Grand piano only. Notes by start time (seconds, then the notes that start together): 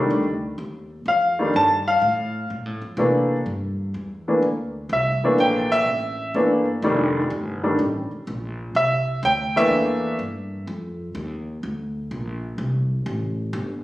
Already playing: D#3 G3 A3 D4
1.08 F5
1.39 D#3 G3 A3 D4
1.56 A5
1.88 F5
2.98 E3 A3 A#3 D4
4.28 E3 A3 A#3 D4
4.93 E5
5.24 E3 A3 A#3 D4
5.40 G5
5.72 E5
6.35 E3 A3 A#3 D4
6.84 D#3 G3 A3 D4
7.63 D#3 G3 A3 D4
8.76 E5
9.25 G5
9.56 E3 A3 A#3 D4 E5